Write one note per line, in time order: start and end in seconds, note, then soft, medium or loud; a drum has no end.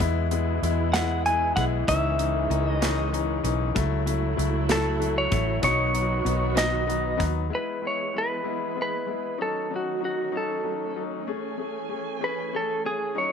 0.00 0.59 E2 medium
0.00 1.85 B2 medium
0.00 3.71 E3 medium
0.00 0.26 G#3 medium
0.00 1.85 G#3 medium
0.00 0.26 B3 medium
0.00 1.85 E4 medium
0.00 0.26 E4 medium
0.00 kick loud
0.00 closed hi-hat medium
0.31 0.57 G#3 medium
0.31 0.57 B3 medium
0.31 0.57 E4 medium
0.31 closed hi-hat medium
0.62 1.52 E2 medium
0.62 0.89 G#3 medium
0.62 0.89 B3 medium
0.62 0.89 E4 medium
0.62 closed hi-hat soft
0.94 1.20 G#3 medium
0.94 1.20 B3 medium
0.94 1.20 E4 medium
0.94 1.25 F#5 medium
0.94 snare loud
0.94 closed hi-hat medium
1.26 1.51 G#3 medium
1.26 1.52 B3 medium
1.26 1.52 E4 medium
1.26 1.55 G#5 medium
1.26 closed hi-hat soft
1.56 1.86 B1 medium
1.56 1.83 G#3 medium
1.56 1.83 B3 medium
1.56 1.83 E4 medium
1.56 1.64 F#5 medium
1.56 kick medium
1.56 closed hi-hat medium
1.86 2.47 C#2 medium
1.86 5.58 C#3 medium
1.86 3.73 D#3 medium
1.86 2.14 E3 medium
1.86 3.73 G#3 medium
1.86 2.14 C#4 medium
1.86 2.14 D#4 loud
1.86 2.68 E5 medium
1.86 kick loud
1.86 closed hi-hat medium
2.18 2.45 E3 medium
2.18 2.45 C#4 medium
2.18 2.45 D#4 medium
2.18 closed hi-hat medium
2.49 3.40 C#2 medium
2.49 2.76 E3 medium
2.49 2.76 C#4 medium
2.49 2.76 D#4 medium
2.49 closed hi-hat soft
2.68 3.09 D#5 medium
2.81 3.07 E3 medium
2.81 3.07 C#4 medium
2.81 3.08 D#4 medium
2.81 snare loud
2.81 closed hi-hat medium
3.12 3.39 E3 medium
3.12 3.39 C#4 medium
3.12 3.39 D#4 medium
3.12 closed hi-hat soft
3.43 3.73 B1 medium
3.43 3.70 E3 medium
3.43 3.70 C#4 medium
3.43 3.70 D#4 medium
3.43 closed hi-hat medium
3.75 4.34 C#2 loud
3.75 4.01 F#3 medium
3.75 7.47 F#3 medium
3.75 5.61 A3 medium
3.75 4.01 A3 medium
3.75 5.61 E4 medium
3.75 4.01 E4 medium
3.75 kick medium
3.75 closed hi-hat medium
4.06 4.32 F#3 medium
4.06 4.33 A3 medium
4.06 4.33 E4 medium
4.06 closed hi-hat medium
4.37 5.28 C#2 medium
4.37 4.64 F#3 medium
4.37 4.64 A3 medium
4.37 4.64 E4 medium
4.37 closed hi-hat soft
4.69 4.95 F#3 medium
4.69 4.95 A3 medium
4.69 4.96 E4 medium
4.69 5.14 A4 medium
4.69 snare loud
4.69 closed hi-hat medium
4.99 5.26 F#3 medium
4.99 5.26 A3 medium
4.99 5.26 E4 medium
4.99 closed hi-hat soft
5.18 5.61 C#5 medium
5.31 5.61 A1 medium
5.31 5.57 F#3 medium
5.31 5.57 A3 medium
5.31 5.58 E4 medium
5.31 kick medium
5.31 closed hi-hat medium
5.62 6.22 B1 loud
5.62 7.49 D#3 medium
5.62 5.89 F#3 medium
5.62 5.89 B3 medium
5.62 7.49 B3 medium
5.62 5.89 D#4 loud
5.62 7.50 F#4 medium
5.62 6.58 C#5 medium
5.62 kick loud
5.62 closed hi-hat medium
5.93 6.20 F#3 medium
5.93 6.20 B3 medium
5.93 6.20 D#4 medium
5.93 closed hi-hat medium
6.25 7.16 B1 medium
6.25 6.51 F#3 medium
6.25 6.51 B3 medium
6.25 6.51 D#4 medium
6.25 closed hi-hat soft
6.55 6.82 F#3 medium
6.55 6.82 B3 medium
6.55 6.82 D#4 medium
6.55 7.24 D#5 medium
6.55 snare loud
6.55 closed hi-hat medium
6.87 7.14 F#3 medium
6.87 7.14 B3 medium
6.87 7.14 D#4 medium
6.87 closed hi-hat soft
7.17 7.49 D#2 medium
7.17 7.45 F#3 medium
7.17 7.45 B3 medium
7.17 7.45 D#4 medium
7.17 kick medium
7.17 closed hi-hat medium
7.50 7.76 G#3 medium
7.50 9.38 G#3 soft
7.50 7.77 B3 medium
7.50 9.38 B3 soft
7.50 7.77 E4 medium
7.50 9.38 G#4 medium
7.54 9.39 E3 soft
7.54 7.85 B4 medium
7.82 8.08 G#3 soft
7.82 8.08 B3 soft
7.82 8.08 E4 soft
7.87 8.17 C#5 medium
8.14 8.40 G#3 soft
8.14 8.40 B3 soft
8.14 8.40 E4 soft
8.18 8.81 B4 medium
8.44 8.71 G#3 medium
8.44 8.71 B3 soft
8.44 8.71 E4 medium
8.75 9.02 G#3 medium
8.75 9.02 B3 soft
8.75 9.03 E4 medium
8.82 9.38 B4 medium
9.07 9.33 G#3 soft
9.07 9.33 B3 soft
9.07 9.34 E4 soft
9.38 11.25 D#3 soft
9.38 9.65 F#3 medium
9.38 13.32 A3 soft
9.38 9.65 C#4 medium
9.38 13.32 C#4 soft
9.38 9.65 D#4 medium
9.38 11.25 F#4 medium
9.42 9.73 A4 medium
9.70 9.96 F#3 soft
9.70 9.96 C#4 soft
9.70 9.97 D#4 medium
9.76 10.04 F#4 soft
10.00 10.27 F#3 soft
10.00 10.27 C#4 soft
10.00 10.27 D#4 medium
10.05 10.36 F#4 medium
10.32 10.59 F#3 medium
10.32 10.59 C#4 medium
10.32 10.59 D#4 medium
10.37 11.02 A4 medium
10.63 10.90 F#3 soft
10.63 10.90 C#4 soft
10.63 10.90 D#4 medium
10.95 11.22 F#3 soft
10.95 11.22 C#4 soft
10.95 11.22 D#4 medium
11.27 13.14 E3 medium
11.27 11.54 A3 medium
11.27 11.53 C#4 medium
11.27 11.54 G#4 medium
11.27 13.14 G#5 medium
11.58 11.84 A3 soft
11.58 11.85 C#4 soft
11.58 11.84 G#4 medium
11.89 12.16 A3 soft
11.89 12.16 C#4 soft
11.89 12.16 G#4 medium
12.20 12.47 A3 medium
12.20 12.47 C#4 medium
12.20 12.48 G#4 medium
12.20 12.55 B4 medium
12.53 12.79 A3 medium
12.53 12.79 C#4 soft
12.53 12.79 G#4 medium
12.53 12.86 A4 medium
12.84 13.11 A3 soft
12.84 13.10 C#4 soft
12.84 13.11 G#4 medium
12.84 13.18 G#4 medium
13.15 13.32 D#3 medium
13.15 13.32 F#3 medium
13.15 13.32 C#4 medium
13.15 13.32 D#4 medium
13.15 13.32 F#4 medium
13.15 13.32 C#5 medium